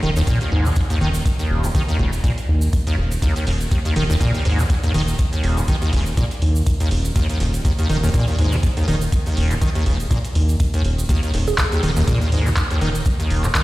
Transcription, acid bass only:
0.03 D#3
0.16 D#2
0.27 A#2
0.41 D#2
0.52 G#2
0.66 C#3
0.76 D#2
0.90 D#2
1.01 D#3
1.39 D#2
1.64 C#3
1.75 D#3
1.89 D#2
1.99 C#2
2.24 A#2
2.87 D#2
3.22 D#2
3.36 D#2
3.47 D#2
3.71 D#2
3.85 D#2
3.96 D#3
4.10 D#2
4.21 A#2
4.34 D#2
4.45 G#2
4.59 C#3
4.70 D#2
4.84 D#2
4.94 D#3
5.33 D#2
5.57 C#3
5.68 D#3
5.82 D#2
5.93 C#2
6.17 A#2
6.80 D#2
7.16 D#2
7.30 D#2
7.40 D#2
7.65 D#2
7.79 D#2
7.89 D#3
8.03 D#2
8.14 A#2
8.28 D#2
8.39 G#2
8.52 C#3
8.63 D#2
8.77 D#2
8.88 D#3
9.26 D#2
9.51 C#3
9.62 D#3
9.75 D#2
9.86 C#2
10.11 A#2
10.74 D#2
11.09 D#2
11.23 D#2
11.34 D#2
11.58 D#2
11.72 D#2
11.83 D#3
11.97 D#2
12.07 A#2
12.21 D#2
12.32 G#2
12.46 C#3
12.57 D#2
12.71 D#2
12.81 D#3
13.20 D#2
13.44 C#3
13.55 D#3

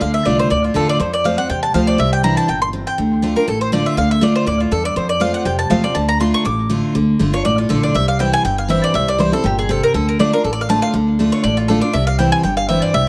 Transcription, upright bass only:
0.01 D2
0.26 C2
0.51 D2
0.75 E2
1.00 F2
1.49 E2
1.74 D2
1.99 C2
2.48 G1
2.98 D2
3.47 A1
3.97 D2
4.47 D2
4.71 E2
4.96 F2
5.45 F2
5.71 E2
5.95 D2
6.45 A1
6.95 D2
7.20 G1
7.45 A1
7.70 A#1
7.95 C2
8.44 G1
8.95 C2
9.44 G1
9.94 D2
10.44 A1
10.94 D2
11.44 A1
11.94 C2
12.44 G1
12.94 C2

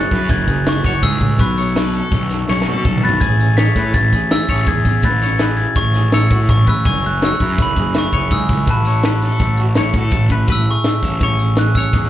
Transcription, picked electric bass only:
0.12 F#2
0.30 F#1
0.48 F#1
0.85 F#1
1.03 C#2
1.21 C#2
1.39 B1
2.12 B1
2.49 B1
2.68 B2
2.85 B1
3.04 B1
3.21 A1
3.76 A2
3.94 A1
4.13 A1
4.49 A1
4.67 E2
4.86 E2
5.04 A1
5.76 A1
6.14 A1
6.31 A2
6.49 A1
6.68 A1
6.86 F#1
7.41 F#2
7.59 F#1
7.77 F#1
8.13 F#1
8.31 C#2
8.49 C#2
8.68 A1
9.40 A1
9.79 A1
9.94 A2
10.12 A1
10.30 A1
10.48 A1
11.03 A1
11.21 A1
11.75 A1
11.93 E2

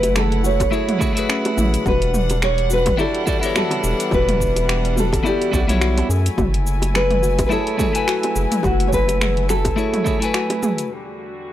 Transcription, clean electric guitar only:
Already playing: A3 E4 F#4 G#4 B4
0.71 A3 E4 F#4 G#4 C#5
0.99 A3 E4 F#4 G#4 C#5
1.13 A3 E4 F#4
1.18 G#4 B4
2.97 B3 E4 F#4 G4 D5
3.26 B3 E4 F#4 G4 D5
3.39 B3 E4 F#4
3.44 G4 C#5
5.23 B3 E4 F#4 G4 D5
5.52 B3 E4 F#4 G4 D5
5.67 G3 B3 E4 F#4 C#5
7.49 A3 E4 F#4 G#4 C#5
7.77 A3 E4 F#4 G#4 C#5
7.92 A3 E4 F#4
7.96 B4 G#5
9.76 A3 E4 F#4 G#4 C#5
10.04 A3 E4 F#4 G#4 C#5
10.19 A3 E4 F#4
10.23 B4 G#5

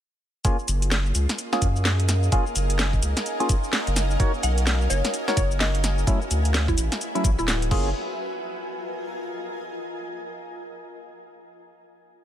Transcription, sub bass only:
0.68 F#1
1.15 C#2
1.62 F#2
2.56 F#1
3.02 C#2
3.87 F#1
4.43 B1
4.90 F#1
5.37 F#1
6.31 D2
6.77 A1
7.24 A1
7.39 D1
7.71 F#1

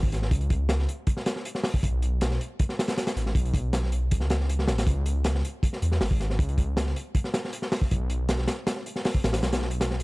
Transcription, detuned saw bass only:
Already playing: G#1
0.31 C#2
1.83 B1
3.16 A1
3.35 B1
4.12 C#2
4.68 A1
4.87 C#2
5.82 E2
6.01 G#1
6.39 C#2
7.92 B1
9.24 A1
9.43 B1

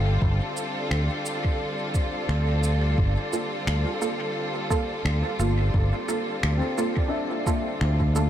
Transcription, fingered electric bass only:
Already playing: G1
0.22 G1
0.91 D2
2.29 D2
2.98 G1
3.67 D2
5.05 D2
5.39 G1
5.74 G1
6.43 D2
7.81 D2

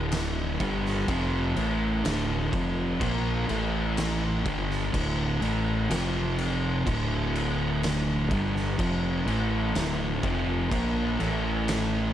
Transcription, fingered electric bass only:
Already playing: D1
0.60 G1
1.08 F1
1.57 A1
2.05 D1
2.53 F1
3.01 A#1
3.50 A1
4.45 G1
4.94 D1
5.41 A1
5.90 F1
6.87 D1
8.31 G1
8.79 F1
9.27 A1
9.75 D1
10.23 F1
10.71 A#1
11.21 A1

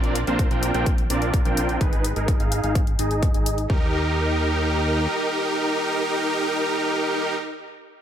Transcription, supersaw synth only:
Already playing: C4 D4 F4 A#4 D5
0.27 C4 D4 F4 A#4 C5
0.51 C4 D4 F4 A#4 G5
0.75 C4 D4 F4 A#4 G5
1.10 C4 D4 F4 A#4 D5
1.45 C4 D4 F4 A#4 G5
1.81 D#4 G#4 B4
2.16 D#4 G#4 A#4
2.40 D#4 G#4 F5
2.64 D#4 G#4 F5
2.99 D#4 G#4 D#5
3.34 D#4 G#4 D#5
3.70 D#4 G4 A#4

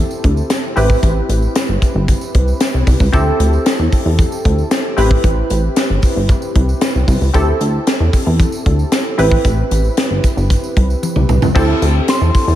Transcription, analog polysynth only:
Already playing: C4 E4 G4 A4
0.76 C4 E4 G4 B4
3.12 C4 E4 G4 A4
4.97 C4 E4 G4 B4
7.34 C4 E4 G4 A4
9.18 C4 E4 G4 B4
11.55 C4 E4 G4 A4

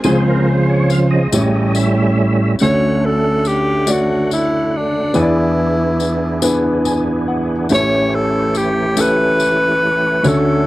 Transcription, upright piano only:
0.04 C#2 C#3 G#3 C4 C#4 F4 C5
1.32 A1 A2 A3 C#4 E4 G4 C#5
2.61 D2 D3 A3 C#4 D4 F#4 C#5
3.87 A3 D4 F#4 C#5 D5
5.14 E2 E3 B3 D4 E4 G#4 C#5
5.22 D5
6.42 B3 D4 E4 G#4 B4
6.86 G#5
7.28 F#5
7.70 A1 A2 A3 C#4 E4 G4 C#5
8.96 A3 C#4 E4 G4 A4
10.23 D2 D3 A3 C#4 D4 F#4 C#5

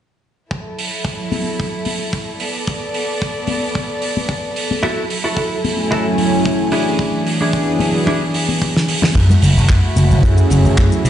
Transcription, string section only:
0.51 F#3 E4 A4
2.39 B3 D5
4.83 F#3 E4
6.72 E3 D4 G#4
9.15 A3 E4 F#4
11.04 B3 A4 D6

